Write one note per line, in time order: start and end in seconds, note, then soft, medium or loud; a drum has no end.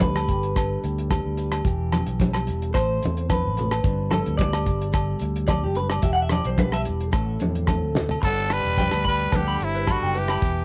0.00 0.30 D2 medium
0.00 1.66 G2 medium
0.00 1.10 G3 medium
0.00 1.63 B3 medium
0.00 0.28 D4 medium
0.00 0.79 B4 loud
0.00 kick medium
0.00 closed hi-hat medium
0.00 high conga loud
0.00 maracas medium
0.16 cross-stick medium
0.16 low agogo medium
0.27 0.76 G1 medium
0.27 1.66 D4 medium
0.27 kick medium
0.27 closed hi-hat soft
0.27 muted conga soft
0.27 maracas medium
0.43 closed hi-hat soft
0.55 1.63 D3 medium
0.55 kick medium
0.55 cross-stick medium
0.55 closed hi-hat medium
0.55 muted conga soft
0.55 low agogo medium
0.55 maracas medium
0.84 1.20 D2 medium
0.84 closed hi-hat soft
0.84 maracas medium
0.98 closed hi-hat medium
1.11 1.63 G3 medium
1.11 kick medium
1.11 cross-stick medium
1.11 closed hi-hat soft
1.11 high conga medium
1.11 low agogo medium
1.11 maracas medium
1.25 1.60 D2 medium
1.38 1.63 B4 medium
1.38 closed hi-hat medium
1.38 maracas medium
1.52 cross-stick medium
1.52 closed hi-hat medium
1.52 low agogo medium
1.65 2.02 E1 loud
1.65 2.72 E3 medium
1.65 2.75 G4 medium
1.65 kick medium
1.65 closed hi-hat soft
1.65 muted conga soft
1.65 maracas medium
1.92 2.73 B3 medium
1.92 cross-stick medium
1.92 closed hi-hat soft
1.92 muted conga soft
1.92 high conga medium
1.92 low agogo medium
1.92 maracas medium
2.07 2.49 B1 medium
2.07 closed hi-hat soft
2.20 2.72 G3 medium
2.20 kick medium
2.20 closed hi-hat soft
2.20 high conga loud
2.20 maracas medium
2.34 cross-stick medium
2.34 low agogo medium
2.47 2.71 E1 medium
2.47 2.73 E4 medium
2.47 closed hi-hat soft
2.47 muted conga soft
2.47 maracas medium
2.62 closed hi-hat soft
2.74 2.98 A1 loud
2.74 3.29 A2 medium
2.74 3.82 A4 medium
2.74 3.26 C5 loud
2.74 kick medium
2.74 cross-stick medium
2.74 closed hi-hat medium
2.74 muted conga soft
2.74 low agogo medium
2.74 maracas medium
3.02 3.46 E2 medium
3.02 3.82 C4 medium
3.02 closed hi-hat soft
3.02 high conga medium
3.02 low conga medium
3.02 maracas medium
3.17 closed hi-hat medium
3.29 3.57 B2 medium
3.29 4.08 B4 medium
3.29 kick medium
3.29 cross-stick medium
3.29 closed hi-hat medium
3.29 high conga medium
3.29 low agogo medium
3.29 maracas medium
3.45 3.79 A1 medium
3.57 3.83 A2 medium
3.57 closed hi-hat medium
3.57 low conga medium
3.57 maracas medium
3.71 cross-stick medium
3.71 closed hi-hat medium
3.71 low agogo medium
3.83 4.20 G1 loud
3.83 6.03 G2 medium
3.83 4.65 D4 medium
3.83 kick medium
3.83 closed hi-hat medium
3.83 muted conga soft
3.83 maracas loud
4.11 6.00 B3 medium
4.11 4.37 A4 medium
4.11 cross-stick medium
4.11 closed hi-hat medium
4.11 muted conga soft
4.11 high conga medium
4.11 low agogo medium
4.11 maracas medium
4.26 4.68 D2 medium
4.26 closed hi-hat medium
4.37 5.46 G3 medium
4.37 5.17 D5 medium
4.37 kick medium
4.37 closed hi-hat medium
4.37 high conga loud
4.37 maracas medium
4.53 cross-stick medium
4.53 low agogo medium
4.66 5.13 G1 medium
4.66 5.76 D4 medium
4.66 kick medium
4.66 closed hi-hat soft
4.66 muted conga soft
4.66 maracas medium
4.81 closed hi-hat soft
4.92 6.00 D3 medium
4.92 kick medium
4.92 cross-stick medium
4.92 closed hi-hat medium
4.92 muted conga soft
4.92 low agogo medium
4.92 maracas medium
5.19 5.65 D2 medium
5.19 closed hi-hat medium
5.19 maracas medium
5.36 closed hi-hat medium
5.47 6.00 G3 medium
5.47 5.62 D5 medium
5.47 kick medium
5.47 cross-stick medium
5.47 closed hi-hat medium
5.47 high conga medium
5.47 low agogo medium
5.47 maracas medium
5.64 5.98 F#1 medium
5.64 5.76 G4 medium
5.75 5.90 B4 medium
5.75 muted nylon-string guitar stroke medium
5.75 closed hi-hat soft
5.75 maracas medium
5.90 6.02 D5 medium
5.90 cross-stick medium
5.90 closed hi-hat medium
5.90 low agogo medium
6.02 6.39 E1 loud
6.02 7.10 E3 medium
6.02 7.11 G4 medium
6.02 6.12 E5 medium
6.02 kick medium
6.02 closed hi-hat soft
6.02 muted conga soft
6.02 maracas medium
6.13 6.22 F#5 loud
6.22 6.31 E5 medium
6.29 7.09 B3 medium
6.29 6.45 D5 loud
6.29 cross-stick medium
6.29 closed hi-hat medium
6.29 muted conga soft
6.29 high conga medium
6.29 low agogo medium
6.29 maracas medium
6.44 6.88 B1 medium
6.44 6.59 C5 medium
6.44 closed hi-hat medium
6.56 7.09 G3 medium
6.56 6.73 B4 loud
6.56 kick medium
6.56 closed hi-hat soft
6.56 high conga loud
6.56 maracas medium
6.72 6.81 E5 medium
6.72 cross-stick medium
6.72 low agogo medium
6.85 7.10 E1 medium
6.85 7.10 E4 medium
6.85 closed hi-hat soft
6.85 muted conga soft
6.85 maracas medium
7.00 closed hi-hat soft
7.11 7.36 A1 loud
7.11 8.19 A2 medium
7.11 8.19 A4 medium
7.11 kick loud
7.11 cross-stick medium
7.11 closed hi-hat soft
7.11 muted conga soft
7.11 low agogo medium
7.11 maracas medium
7.40 7.83 E2 loud
7.40 8.19 C4 medium
7.40 closed hi-hat soft
7.40 high conga medium
7.40 maracas medium
7.55 closed hi-hat medium
7.66 8.18 A3 medium
7.66 kick medium
7.66 cross-stick medium
7.66 closed hi-hat medium
7.66 high conga medium
7.66 low agogo medium
7.66 maracas medium
7.83 8.17 D2 medium
7.95 8.19 E4 medium
7.95 snare soft
7.95 low conga medium
7.95 maracas medium
8.09 floor tom medium
8.09 low agogo medium
8.22 8.59 G1 medium
8.22 10.42 G2 medium
8.22 8.55 D3 medium
8.22 9.32 B3 medium
8.22 8.54 A4 loud
8.22 muted clean electric guitar stroke medium
8.22 kick medium
8.22 crash medium
8.22 muted conga soft
8.22 maracas medium
8.39 maracas soft
8.50 9.06 G3 medium
8.50 9.05 D4 medium
8.50 9.06 B4 loud
8.50 cross-stick medium
8.50 closed hi-hat soft
8.50 low agogo medium
8.50 maracas medium
8.65 8.88 E1 medium
8.65 closed hi-hat medium
8.65 maracas soft
8.77 10.39 G3 medium
8.77 8.85 G5 medium
8.77 kick medium
8.77 closed hi-hat soft
8.77 high conga medium
8.77 maracas medium
8.91 9.27 D2 medium
8.91 8.99 B4 medium
8.91 cross-stick medium
8.91 low agogo medium
8.91 maracas soft
9.04 9.38 G3 medium
9.04 9.38 B4 loud
9.04 9.12 B5 medium
9.04 kick medium
9.04 closed hi-hat soft
9.04 maracas medium
9.19 closed hi-hat soft
9.32 9.56 D2 loud
9.32 9.40 B4 medium
9.32 kick medium
9.32 cross-stick medium
9.32 closed hi-hat soft
9.32 muted conga soft
9.32 high conga medium
9.32 low agogo medium
9.32 maracas medium
9.36 9.66 D3 medium
9.36 9.66 G4 medium
9.48 9.54 B5 medium
9.60 9.96 G1 medium
9.60 9.93 C3 medium
9.60 10.39 D3 medium
9.60 9.93 E4 medium
9.60 closed hi-hat soft
9.60 muted conga soft
9.60 maracas medium
9.75 9.81 B4 medium
9.75 closed hi-hat soft
9.87 10.42 D4 medium
9.87 9.95 B5 medium
9.87 kick medium
9.87 cross-stick medium
9.87 closed hi-hat soft
9.87 high conga medium
9.87 low agogo medium
9.87 maracas medium
9.92 10.19 D3 medium
9.92 10.20 F#4 medium
10.02 10.36 F#1 medium
10.02 10.09 G5 medium
10.14 10.65 E3 medium
10.14 10.40 B3 medium
10.14 10.22 B4 medium
10.14 closed hi-hat soft
10.14 maracas medium
10.19 10.65 G4 medium
10.28 10.36 B5 medium
10.28 cross-stick medium
10.28 closed hi-hat soft
10.28 low agogo medium
10.42 10.65 E1 medium
10.42 10.65 E3 medium
10.42 10.65 B3 medium
10.42 kick medium
10.42 closed hi-hat soft
10.42 muted conga soft
10.42 maracas loud
10.59 maracas soft